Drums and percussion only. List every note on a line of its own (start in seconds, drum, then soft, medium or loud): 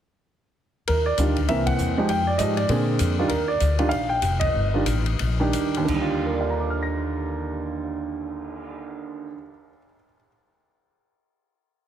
0.87 ride medium
1.18 hi-hat pedal soft
1.18 ride soft
1.36 kick soft
1.36 ride soft
1.48 ride soft
1.67 kick medium
1.67 ride medium
1.78 hi-hat pedal soft
2.09 ride medium
2.39 hi-hat pedal soft
2.39 ride medium
2.57 ride soft
2.69 ride medium
2.99 hi-hat pedal soft
2.99 ride medium
3.29 ride medium
3.60 hi-hat pedal soft
3.60 ride soft
3.79 ride soft
3.91 ride medium
4.22 hi-hat pedal soft
4.22 ride medium
4.41 kick medium
4.41 ride medium
4.86 hi-hat pedal soft
4.86 ride medium
5.06 ride soft
5.19 ride medium
5.53 hi-hat pedal medium
5.53 ride medium
5.74 ride soft
5.88 kick medium
5.88 crash medium
6.10 cymbal swell soft